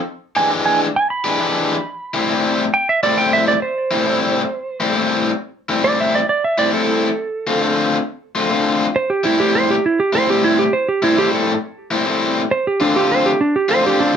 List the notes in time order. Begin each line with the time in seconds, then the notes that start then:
0.36 E3 G#3 D4 G4 G#5
0.50 E3 G#3 D4 G4
0.66 G#5
0.96 G#5
1.10 B5
1.24 E3 G#3 D4 G4
1.39 E3 G#3 D4 G4
2.14 A2 G3 C4 E4
2.28 A2 G3 C4 E4
2.74 G5
2.89 E5
3.03 A2 G3 C4 E4 D5
3.16 A2 G3 C4 E4 G5
3.33 E5
3.48 D5
3.62 C5
3.91 A2 G3 C4 E4
4.06 A2 G3 C4 E4
4.80 A2 G3 C4 E4
4.95 A2 G3 C4 E4
5.69 A2 G3 C4 E4
5.83 A2 G3 C4 E4 D5
6.00 E5
6.15 D5
6.29 D5
6.44 E5
6.58 A2 G3 C4 E4 D5
6.72 A2 G3 C4 E4 A4
7.47 D3 A3 C4 F4
7.61 D3 A3 C4 F4
8.35 D3 A3 C4 F4
8.50 D3 A3 C4 F4
8.96 C5
9.10 G4
9.24 A2 G3 C4 E4
9.39 A2 G3 C4 E4 G4
9.55 C5
9.71 G4
9.86 E4
10.00 G4
10.13 A2 G3 C4 E4 C5
10.27 A2 G3 C4 E4 G4
10.44 E4
10.59 G4
10.73 C5
10.89 G4
11.02 A2 G3 C4 E4
11.16 A2 G3 C4 E4 G4
11.34 A4
11.91 A2 G3 C4 E4
12.06 A2 G3 C4 E4
12.51 C5
12.67 G4
12.80 D3 A3 C4 D4 F4
12.95 D3 A3 C4 F4 G4
13.12 C5
13.26 G4
13.41 D4
13.56 G4
13.69 D3 A3 C4 F4 C5
13.83 D3 A3 C4 F4 G4
14.00 D4